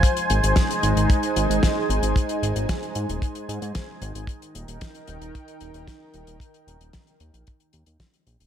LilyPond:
<<
  \new Staff \with { instrumentName = "Analog synth pad" } { \time 4/4 \key aes \major \tempo 4 = 113 <aes ees' c'' aes''>1~ | <aes ees' c'' aes''>1 | <ees ees' bes' g''>1~ | <ees ees' bes' g''>1 | }
  \new Staff \with { instrumentName = "Analog synth bass" } { \clef bass \time 4/4 \key aes \major r8 aes,,16 aes,,16 r8 aes,,16 aes,,16 r8 aes,,16 aes,,16 r8 aes,,16 aes,,16 | r8 aes,,16 aes,,16 r8 aes,16 ees,,16 r8 aes,16 aes,16 r8 aes,,16 aes,,16 | r8 ees,,16 ees,,16 r8 ees,,16 ees,,16 r8 ees,,16 ees,,16 r8 ees,,16 ees,,16 | r8 ees,,16 ees,,16 r8 ees,16 bes,,16 r8 ees,16 ees,16 r8 bes,,16 ees,,16 | }
  \new DrumStaff \with { instrumentName = "Drums" } \drummode { \time 4/4 <hh bd>16 hh16 hh16 hh16 <hh bd sn>16 hh16 hh16 hh16 <hh bd>16 hh16 hh16 hh16 <hh bd sn>8 hh16 hh16 | <hh bd>16 hh16 hh16 hh16 <hh bd sn>16 hh16 hh16 hh16 <hh bd>16 hh16 hh16 hh16 <hh bd sn>8 hh16 hh16 | <hh bd>16 hh16 hh16 hh16 <hh bd sn>16 hh16 hh16 hh16 <hh bd>16 hh16 hh16 hh16 <hh bd sn>8 hh16 hh16 | <hh bd>16 hh16 hh16 hh16 <hh bd sn>16 hh16 hh16 hh16 <hh bd>16 hh16 hh16 hh16 <hh bd sn>16 hh16 hh16 hh16 | }
>>